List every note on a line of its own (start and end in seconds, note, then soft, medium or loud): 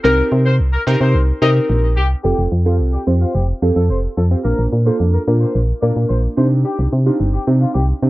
0.04 0.22 C2 loud
0.04 0.48 C4 medium
0.04 0.49 D#4 medium
0.04 0.49 G4 medium
0.04 0.23 A#4 loud
0.04 0.49 A#4 medium
0.32 0.61 C3 loud
0.45 0.55 C5 medium
0.60 0.77 C2 loud
0.73 0.82 A#4 medium
0.87 0.96 C3 loud
0.87 1.16 C4 medium
0.87 1.16 D#4 medium
0.87 1.16 G4 medium
0.87 1.17 A#4 medium
1.00 1.16 C3 loud
1.00 1.19 C5 medium
1.14 1.32 C2 loud
1.42 1.60 C3 loud
1.42 1.86 C4 medium
1.42 1.86 D#4 medium
1.42 1.86 G4 medium
1.42 1.86 A#4 medium
1.42 1.51 D#5 medium
1.70 1.98 A#1 loud
1.97 2.15 C2 loud
1.97 2.06 G4 medium
2.24 2.34 F1 loud
2.24 2.47 C4 medium
2.24 2.47 F4 medium
2.24 2.43 G4 loud
2.24 2.47 G4 medium
2.24 2.47 A4 medium
2.38 2.47 F1 medium
2.52 2.81 F2 medium
2.65 2.88 C4 medium
2.65 2.75 F4 medium
2.65 2.88 F4 medium
2.65 2.88 G4 medium
2.65 2.88 A4 medium
2.80 2.97 C2 medium
2.93 3.03 G4 medium
3.07 3.25 F2 loud
3.07 3.36 C4 medium
3.07 3.37 F4 medium
3.07 3.37 G4 medium
3.07 3.37 C5 medium
3.21 3.30 F4 medium
3.34 3.53 F1 loud
3.34 3.44 G4 medium
3.62 3.71 F2 loud
3.62 3.99 C4 medium
3.62 3.99 F4 medium
3.62 3.99 G4 medium
3.62 3.99 A4 medium
3.76 3.91 F2 loud
3.76 3.85 A4 medium
3.90 4.08 F1 medium
3.90 3.99 C5 medium
4.17 4.35 F2 loud
4.17 4.26 A4 medium
4.31 4.38 C4 medium
4.31 4.38 F4 medium
4.31 4.38 G4 medium
4.31 4.39 C5 medium
4.45 4.54 A#1 medium
4.45 4.67 A#3 medium
4.45 4.67 D4 medium
4.45 4.67 F4 medium
4.45 4.63 A#4 loud
4.45 4.67 A#4 medium
4.59 4.68 A#1 loud
4.73 4.90 A#2 medium
4.86 5.08 A#3 medium
4.86 5.08 D4 medium
4.86 5.08 F4 medium
4.86 5.08 A4 medium
4.86 4.95 C5 medium
5.00 5.18 F2 loud
5.13 5.23 A#4 medium
5.28 5.46 A#2 loud
5.28 5.57 A#3 medium
5.28 5.57 D4 medium
5.28 5.57 F4 medium
5.28 5.57 A#4 medium
5.41 5.59 C5 medium
5.55 5.73 A#1 loud
5.82 5.92 A#2 loud
5.82 6.19 A#3 medium
5.82 6.19 D4 medium
5.82 6.19 F4 medium
5.82 6.19 A#4 medium
5.82 5.91 D5 medium
5.96 6.05 A#2 medium
6.10 6.28 A#1 loud
6.10 6.19 C5 medium
6.37 6.64 C3 medium
6.37 6.92 C4 medium
6.37 6.93 D4 medium
6.37 6.93 D#4 medium
6.37 6.93 G4 medium
6.37 6.46 C5 medium
6.65 6.83 G4 loud
6.79 6.88 C2 loud
6.93 7.10 C3 loud
7.06 7.28 C4 medium
7.06 7.28 D4 medium
7.06 7.28 D#4 medium
7.06 7.15 F4 medium
7.06 7.28 G4 medium
7.20 7.38 G1 loud
7.33 7.43 G4 medium
7.47 7.65 C3 loud
7.47 7.77 C4 medium
7.47 7.77 D4 medium
7.47 7.77 D#4 medium
7.47 7.77 G4 medium
7.61 7.70 F4 medium
7.75 7.93 C2 loud
7.75 7.84 G4 medium
8.02 8.10 C3 loud
8.02 8.10 C4 medium
8.02 8.10 D4 medium
8.02 8.10 D#4 medium
8.02 8.10 G4 medium